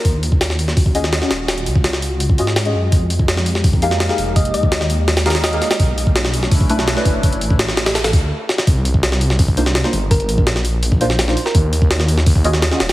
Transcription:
<<
  \new Staff \with { instrumentName = "Synth pluck" } { \time 4/4 \key ees \major \tempo 4 = 167 r1 | r1 | r1 | ees''8 ees''8 r2 ees''4 |
r1 | r1 | r1 | bes'8 r2. r16 bes'16 |
r1 | }
  \new Staff \with { instrumentName = "Synth stab" } { \time 4/4 \key ees \major r2 r8 <des' f' ges' aes' ees''>16 r8 <des' f' ges' aes' ees''>16 r8 | r2 r8 <des' f' ges' aes' ees''>16 r8 <des' f' ges' aes' ees''>16 r8 | r2 r8 <ees' g' aes' bes' f''>16 r8 <ees' g' aes' bes' f''>16 r8 | r2 r8 <ees' g' aes' bes' f''>16 r8 <ees' g' aes' bes' f''>16 r8 |
r2 r8 <a cis' d' e' b'>16 r8 <a cis' d' e' b'>16 r8 | r1 | r2 r8 <bes d' ees' f' c''>16 r8 <bes d' ees' f' c''>16 r8 | r2 r8 <bes d' ees' f' c''>16 r8 <bes d' ees' f' c''>16 r8 |
r2 r8 <des' f' ges' aes' ees''>16 r8 <des' f' ges' aes' ees''>16 r8 | }
  \new Staff \with { instrumentName = "Ambient pad" } { \time 4/4 \key ees \major << { <des' f' ges'>1~ | <des' f' ges'>1 | <bes ees' g'>1~ | <bes ees' g'>1 |
<cis' d' e'>1~ | <cis' d' e'>2. r4 | r1 | r1 |
r1 | } \\ { aes1~ | aes1~ | aes1~ | aes1 |
a1~ | a2. r4 | r1 | r1 |
r1 | } >> }
  \new Staff \with { instrumentName = "Detuned saw bass" } { \clef bass \time 4/4 \key ees \major ees,2 ees,4 r8 ees,,8~ | ees,,8 des,2 aes,4 ges,8 | f,2 f,4 r8 f,,8~ | f,,8 ees,2. r8 |
b,,2 b,,4 r8 fis,,8~ | fis,,8 a,,2 d,8 r4 | c,2 c,4 r8 g,,8~ | g,,8 bes,,2. r8 |
ees,2 ees,4 r8 ees,,8 | }
  \new DrumStaff \with { instrumentName = "Drums" } \drummode { \time 4/4 <hho bd>8 hho16 bd16 <hho sn>16 sn16 hho16 sn16 <hho bd>16 bd16 hho16 sn16 <hho sn>16 sn16 <hho sn>8 | <hho sn>16 hh16 hho16 bd16 <hho sn>16 sn16 hho8 hho16 bd16 hho16 sn16 <hho sn>16 hh8. | <hho bd>8 hho16 bd16 <hho sn>16 sn16 hho16 sn16 <hho bd>16 bd16 hho16 sn16 <hho sn>16 sn16 hho8 | <hho bd>16 hh16 hho16 bd16 <hho sn>16 sn16 hho8 <hho sn>16 <hho sn>16 <hho sn>32 <hho sn>32 <hho sn>16 <hho sn>16 hh16 <hho sn>16 <hho sn>16 |
<hho bd>8 hho16 bd16 <hho sn>16 sn16 hho16 sn16 <hho bd>16 bd16 hho16 sn16 <hho sn>16 sn16 <hho bd>8 | <hho bd>16 hh16 hho16 bd16 <hho sn>16 sn16 <hho sn>16 <hho sn>16 <hho sn>16 <hho sn>16 <hho bd>8 r8 sn16 sn16 | <hho bd>8 hho16 bd16 <hho sn>16 sn16 hho16 sn16 <hho bd>16 bd16 hho16 sn16 <hho sn>16 sn16 hho8 | <hho bd>16 hh16 hho16 bd16 <hho sn>16 sn16 hho8 hho16 bd16 hho16 sn16 <hho sn>16 sn16 hho16 sn16 |
<hho bd>8 hho16 bd16 <hho sn>16 sn16 hho16 sn16 <hho bd>16 bd16 hho16 sn16 <hho sn>16 sn16 <hho sn>16 <hho sn>16 | }
>>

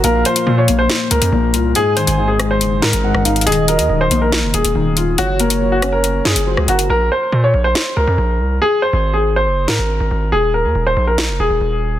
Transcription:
<<
  \new Staff \with { instrumentName = "Soft synth lead" } { \time 4/4 \key bes \minor \tempo 4 = 140 f''2 r2 | aes''2 r4 ges''8 f''8 | ees''2 r2 | des''2. c''8 bes'8 |
r1 | r1 | r1 | }
  \new Staff \with { instrumentName = "Grand piano" } { \time 4/4 \key bes \minor bes'8 c''8. des''8 c''8. bes'4. | aes'8 c''8. aes'8 c''8. bes'4. | aes'8 bes'8. c''8 bes'8. aes'4. | ges'8 bes'8. ges'8 bes'8. aes'4 ges'8 |
bes'8 c''8. des''8 c''8. bes'4. | aes'8 c''8. aes'8 c''8. bes'4. | aes'8 bes'8. c''8 bes'8. aes'4. | }
  \new Staff \with { instrumentName = "Felt piano" } { \clef bass \time 4/4 \key bes \minor bes,8 f8 bes,8 bes4. bes,8 f'8 | aes,8 ees8 aes,8 aes4. aes,8 ees'8 | ees8 ges8 ees8 bes4. ees8 f'8 | r8 bes8 ges8 des'4. ges8 ges''8 |
r1 | r1 | r1 | }
  \new Staff \with { instrumentName = "808-style bass" } { \clef bass \time 4/4 \key bes \minor bes,,8 r8 bes,8 bes,,8 r8 des,16 f,16 bes,,8 c,8 | r8. aes,,4~ aes,,16 ges,,8 aes,16 aes,,8 aes,,16 aes,,8 | ees,,8. ees,16 ees,,8 bes,,8. f,,16 ees,,16 ees,,16 ees,,4 | ges,,2~ ges,,8 ges,16 ges,,8 des,16 ges,,8 |
bes,,8 r8 bes,8 bes,,8 r8 des,16 f,16 bes,,8 c,8 | r8. aes,,4~ aes,,16 ges,,8 aes,16 aes,,8 aes,,16 aes,,8 | ees,,8. ees,16 ees,,8 bes,,8. f,,16 ees,,16 ees,,16 ees,,4 | }
  \new DrumStaff \with { instrumentName = "Drums" } \drummode { \time 4/4 hh8 hh16 hh16 r8 hh8 sn8 hh16 hh16 r8 hh8 | hh8 hh16 hh16 r8 <hh ss>8 hh8 sn16 hh16 r16 ss16 hh16 hh32 hh32 | hh32 hh16. hh16 hh16 r8 hh8 sn8 hh16 hh16 r8 hh8 | hh8 hh16 hh16 r8 <hh ss>8 hh8 sn16 hh16 r16 ss16 hh16 hh16 |
r4 r4 sn4 r4 | r4 r4 r8 sn8 r4 | r4 r4 sn4 r4 | }
>>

